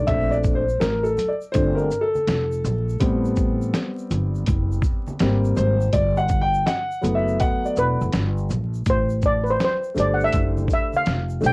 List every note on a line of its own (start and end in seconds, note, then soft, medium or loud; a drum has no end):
0.07 0.77 A#1 loud
0.07 0.61 A3 medium
0.07 0.61 C4 medium
0.07 0.62 D4 medium
0.07 0.33 E5 loud
0.07 kick loud
0.07 closed hi-hat loud
0.07 shaker medium
0.31 0.37 D5 medium
0.31 shaker soft
0.44 kick medium
0.44 shaker medium
0.55 0.79 C5 medium
0.69 shaker soft
0.80 1.15 A1 medium
0.80 1.06 A#4 medium
0.80 snare loud
0.80 closed hi-hat medium
0.80 shaker medium
1.03 1.30 A4 medium
1.03 shaker soft
1.17 closed hi-hat soft
1.17 low conga medium
1.17 shaker soft
1.19 shaker soft
1.28 1.34 D5 medium
1.41 shaker soft
1.52 1.88 G1 loud
1.52 1.87 A3 soft
1.52 1.87 C4 soft
1.52 1.87 D4 medium
1.52 1.79 C5 medium
1.52 kick medium
1.52 closed hi-hat medium
1.52 shaker medium
1.75 2.02 A#4 medium
1.75 shaker soft
1.91 shaker soft
1.91 shaker medium
2.01 3.81 A4 medium
2.15 high conga medium
2.15 shaker soft
2.27 2.61 F1 medium
2.27 snare loud
2.27 closed hi-hat medium
2.27 shaker medium
2.52 shaker soft
2.64 2.98 A#1 loud
2.64 low conga medium
2.64 shaker medium
2.64 shaker soft
2.89 shaker medium
3.00 3.70 A1 loud
3.00 5.16 G3 medium
3.00 5.16 B3 medium
3.00 5.16 C4 medium
3.00 kick medium
3.00 closed hi-hat loud
3.00 shaker medium
3.25 shaker soft
3.36 kick medium
3.36 shaker medium
3.62 shaker soft
3.74 snare loud
3.74 closed hi-hat medium
3.74 shaker medium
3.98 shaker soft
4.11 4.44 G1 loud
4.11 closed hi-hat soft
4.11 low conga medium
4.11 shaker soft
4.35 shaker soft
4.47 4.81 F#1 loud
4.47 kick medium
4.47 closed hi-hat medium
4.47 shaker medium
4.72 shaker soft
4.82 kick medium
4.82 shaker soft
4.82 shaker medium
5.08 high conga medium
5.08 shaker soft
5.20 5.54 G#1 loud
5.20 5.73 G3 medium
5.20 5.73 A#3 medium
5.20 5.74 C4 medium
5.20 snare loud
5.20 closed hi-hat medium
5.20 shaker medium
5.45 shaker soft
5.56 5.90 G#1 loud
5.56 5.91 C5 medium
5.56 low conga medium
5.56 shaker soft
5.56 shaker medium
5.81 shaker medium
5.93 6.63 G1 loud
5.93 6.16 D5 loud
5.93 kick loud
5.93 closed hi-hat medium
5.93 shaker medium
6.17 6.43 F#5 loud
6.17 shaker soft
6.29 kick medium
6.29 shaker medium
6.41 6.65 G5 loud
6.54 shaker soft
6.66 7.17 F#5 loud
6.66 snare loud
6.66 closed hi-hat medium
6.66 shaker medium
6.91 shaker soft
7.01 7.37 F#1 loud
7.01 8.08 F#3 medium
7.01 8.09 A3 soft
7.01 8.09 B3 medium
7.01 closed hi-hat soft
7.01 low conga medium
7.01 shaker soft
7.15 7.38 E5 medium
7.28 shaker soft
7.40 7.65 F#5 loud
7.40 kick medium
7.40 closed hi-hat medium
7.40 shaker medium
7.65 7.99 D5 medium
7.65 shaker soft
7.76 7.99 E1 medium
7.76 8.91 B4 medium
7.76 shaker medium
7.76 shaker soft
8.01 8.12 F#1 medium
8.01 high conga medium
8.01 shaker soft
8.12 8.47 G1 medium
8.12 snare loud
8.12 closed hi-hat medium
8.12 shaker medium
8.38 shaker soft
8.49 8.83 A#1 loud
8.49 low conga medium
8.49 shaker soft
8.49 shaker medium
8.74 shaker medium
8.86 9.56 A1 medium
8.86 kick loud
8.86 closed hi-hat loud
8.86 shaker medium
8.90 9.22 C5 medium
9.10 shaker soft
9.22 9.43 D5 medium
9.22 kick medium
9.22 shaker soft
9.43 9.48 B4 medium
9.43 shaker soft
9.50 9.62 C5 medium
9.60 snare loud
9.60 closed hi-hat medium
9.60 low conga medium
9.60 shaker medium
9.64 9.99 C5 medium
9.83 shaker soft
9.94 10.30 G1 medium
9.94 11.00 A3 medium
9.94 11.00 D4 medium
9.94 11.01 G4 medium
9.94 11.01 C5 medium
9.94 closed hi-hat soft
9.94 low conga medium
9.94 shaker soft
9.98 10.13 D5 medium
9.98 shaker soft
10.14 10.21 F#5 medium
10.20 shaker soft
10.24 10.72 E5 loud
10.32 10.67 F#1 medium
10.32 kick medium
10.32 closed hi-hat medium
10.32 shaker medium
10.57 high conga medium
10.57 shaker soft
10.68 kick medium
10.68 shaker soft
10.73 10.96 E5 medium
10.93 11.46 F5 medium
10.93 high conga medium
10.93 shaker soft
11.06 11.40 F1 medium
11.06 snare loud
11.06 closed hi-hat medium
11.06 shaker medium
11.29 shaker soft
11.41 11.53 B1 loud
11.41 11.53 A3 medium
11.41 11.53 D4 medium
11.41 11.53 G4 medium
11.41 11.53 C5 medium
11.41 low conga medium
11.41 shaker soft
11.44 11.53 G5 loud
11.44 shaker soft